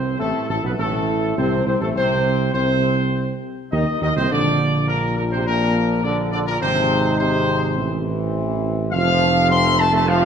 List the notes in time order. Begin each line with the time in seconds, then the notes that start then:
Already playing: C2 C3 C4 C5
0.19 A1 A2 A3 A4
0.49 A1 A2 A3 A4
0.63 B1 B2 B3 B4
0.78 A1 A2 A3 A4
1.37 C2 C3 C4 C5
1.65 C2 C3 C4 C5
1.81 A1 A2 A3 A4
1.95 C2 C3 C4 C5
2.54 C2 C3 C4 C5
3.72 D#2 D#3 D#4 D#5
4.01 D#2 D#3 D#4 D#5
4.16 C2 C3 C4 C5
4.29 A#1 D3 F3 D4 D5
4.88 A#2 A#4
5.16 A#2 A#4
5.32 C3 C5
5.46 A#2 A#4
6.04 D3 D5
6.32 D3 D5
6.47 A#2 A#4
6.60 G#1 C3 G#3 D#4 C5
7.18 C3 C5
7.76 A1 E3 C4
8.92 F1 F3 A3 F5
9.50 C4 C6
9.79 A3 A5
9.93 A3 A5
10.08 F3 F5